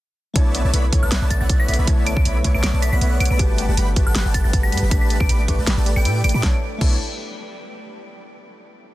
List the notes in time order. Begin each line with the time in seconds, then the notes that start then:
0.34 B1 A3 B3 D4 E4 A4 B4 C#5 D5 E5 A5, kick, closed hi-hat
0.38 C#5
0.55 B3, closed hi-hat
0.65 B1 B3 C#4 B4 C#5 D5 E5 A5
0.73 B1 A3 B3 B4 C#5 D5 E5 B5, closed hi-hat
0.84 B3
0.90 B1 D3 A3 B3 E4 B4 C#5 D5 E5 C#6, kick, closed hi-hat
0.94 C#5
1.03 B1 B3 B4 C#5 D5 E5 A5 F#6
1.11 B1 B3 B4 C#5 D5 E5 B5, snare, closed hi-hat
1.22 B1 B3 C#4 B4 C#5 D5 E5 A5
1.30 A3 A6, kick, closed hi-hat
1.41 B1 B3 B4 C#5 D5 E5 F#5 A6
1.49 B1 A3 B3 B4 C#5 D5 E5 F#5, kick, closed hi-hat
1.60 B6
1.68 B1 B3 B4 C#5 D5 E5 F#5, closed hi-hat
1.74 closed hi-hat
1.79 B1 B3 C#4 B4 C#5 D5 E5 B5
1.86 B1 D3 A3 B3 E4 B4 C#5 D5 E5 A5, kick, closed hi-hat
1.98 B3
2.06 A3 D7, closed hi-hat
2.16 B1 B3 B4 C#5 D5 E5 A5 D7, kick
2.25 B1 B3 B4 C#5 D5 E5 B5, closed hi-hat
2.36 C#4
2.42 B1 D3 A3 B3 E4 B4 C#5 D5 E5 C#6, kick, closed hi-hat
2.46 C#5
2.54 B1 B3 B4 C#5 D5 E5 A5 D7
2.63 B1 A3 B3 B4 C#5 D5 E5 B5 D7, snare, closed hi-hat
2.73 B1 B3 B4 C#5 D5 E5 A5
2.82 B3 B6, closed hi-hat
2.92 B1 B3 C#4 B4 C#5 D5 E5 F#5 B6
3.01 B1 A3 B3 B4 C#5 D5 E5 F#5, closed hi-hat
3.12 B3
3.20 B1 A3 B3 B4 C#5 D5 E5 F#5 D7, closed hi-hat
3.25 closed hi-hat
3.30 B1 B3 B4 C#5 D5 E5 B5 D7
3.37 G1 G3 A3 B3 F#4 G4 B4 F#5 A5, kick, closed hi-hat
3.50 D4
3.58 A3, closed hi-hat
3.68 G1 G3 B3 G4 B4 F#5 A5
3.77 G1 G3 A3 G4 B4 F#5 B5, closed hi-hat
3.94 G1 G3 A3 B3 F#4 G4 B4 F#5 A5, kick, closed hi-hat
4.06 G1 G3 D4 G4 B4 F#5 A5 F#6
4.15 G1 G3 A3 G4 B4 F#5 B5, snare, closed hi-hat
4.25 G1 G3 B3 G4 B4 F#5 A5
4.34 A3 A6, kick, closed hi-hat
4.44 G1 G3 G4 B4 F#5 A5 A6
4.53 G1 G3 B3 G4 B4 F#5 A5, kick, closed hi-hat
4.63 D4 B6
4.72 G2 G3 A3 G4 B4 F#5 A5, closed hi-hat
4.77 closed hi-hat
4.82 G1 G3 B3 G4 B4 F#5 B5
4.89 A1 A3 D4 G4 B4 D5 A5 B6, kick, closed hi-hat
4.93 B4
5.01 B6
5.10 B3, closed hi-hat
5.20 A1 A3 D4 G4 B4 D5 A5 D7, kick
5.29 A1 A3 G4 B4 D5 B5, closed hi-hat
5.40 B3
5.46 A1 A3 D4 G4 B4 D5 C#6, kick, closed hi-hat
5.50 B4
5.58 A1 A3 G4 B4 D5 A5
5.67 A1 A3 B3 G4 B4 D5 B5, snare, closed hi-hat
5.77 A1 A3 D4 G4 B4 D5 A5
5.86 A3, closed hi-hat
5.96 A1 A3 B3 G4 B4 D5 G5 D7
6.05 A2 A3 E4 G4 B4 D5 G5, closed hi-hat
6.15 E4
6.24 A1 A3 G4 B4 D5 G5 D7, closed hi-hat
6.29 closed hi-hat
6.34 A2 A3 D4 G4 B4 D5 B5 D7
6.40 B1 A3 B3 D4 E4 B4 C#5 D5 E5 A5, kick, snare
6.46 C#5
6.78 B1 A3 B3 D4 E4 B4 C#5 D5 E5 A5, kick, crash
6.84 C#5